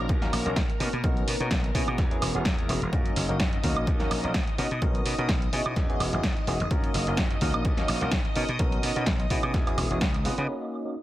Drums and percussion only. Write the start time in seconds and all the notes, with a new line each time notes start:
0.09 kick, closed hi-hat
0.22 snare, closed hi-hat
0.33 open hi-hat, high woodblock
0.46 closed hi-hat
0.56 kick, snare, closed hi-hat
0.70 closed hi-hat
0.80 open hi-hat
0.93 closed hi-hat
1.04 kick, closed hi-hat
1.17 closed hi-hat
1.28 open hi-hat
1.41 closed hi-hat
1.51 kick, snare, closed hi-hat
1.64 closed hi-hat
1.75 kick, open hi-hat
1.88 closed hi-hat, high woodblock
1.98 kick, snare, closed hi-hat
2.11 closed hi-hat
2.22 open hi-hat, high woodblock
2.45 kick, snare, closed hi-hat
2.59 closed hi-hat
2.69 open hi-hat
2.82 closed hi-hat
2.93 kick, closed hi-hat
3.06 closed hi-hat
3.16 open hi-hat
3.29 closed hi-hat
3.40 kick, snare, closed hi-hat
3.53 closed hi-hat
3.64 kick, open hi-hat
3.77 high woodblock
3.87 kick, closed hi-hat
4.00 snare, closed hi-hat
4.11 open hi-hat, high woodblock
4.24 closed hi-hat
4.34 kick, snare, closed hi-hat
4.47 closed hi-hat
4.58 open hi-hat
4.71 closed hi-hat
4.82 kick, closed hi-hat
4.95 closed hi-hat
5.06 open hi-hat
5.19 closed hi-hat
5.29 kick, snare, closed hi-hat
5.42 closed hi-hat
5.53 open hi-hat
5.66 closed hi-hat, high woodblock
5.76 kick, snare, closed hi-hat
5.90 closed hi-hat
6.00 open hi-hat, high woodblock
6.13 closed hi-hat
6.23 kick, snare, closed hi-hat
6.37 closed hi-hat
6.47 open hi-hat
6.60 closed hi-hat
6.71 kick, closed hi-hat
6.84 closed hi-hat
6.94 open hi-hat
7.07 closed hi-hat
7.17 kick, snare, closed hi-hat
7.31 closed hi-hat
7.41 kick, open hi-hat
7.54 closed hi-hat, high woodblock
7.65 kick, closed hi-hat
7.77 snare, closed hi-hat
7.88 open hi-hat, high woodblock
8.01 closed hi-hat
8.11 kick, snare, closed hi-hat
8.25 closed hi-hat
8.36 open hi-hat
8.49 closed hi-hat
8.59 kick, closed hi-hat
8.72 closed hi-hat
8.83 open hi-hat
8.96 closed hi-hat
9.06 kick, snare, closed hi-hat
9.20 closed hi-hat
9.30 kick, open hi-hat
9.43 closed hi-hat, high woodblock
9.54 kick, snare, closed hi-hat
9.67 closed hi-hat, high woodblock
9.78 kick, open hi-hat, high woodblock
9.91 closed hi-hat
10.01 kick, snare, closed hi-hat
10.14 closed hi-hat
10.25 open hi-hat
10.38 closed hi-hat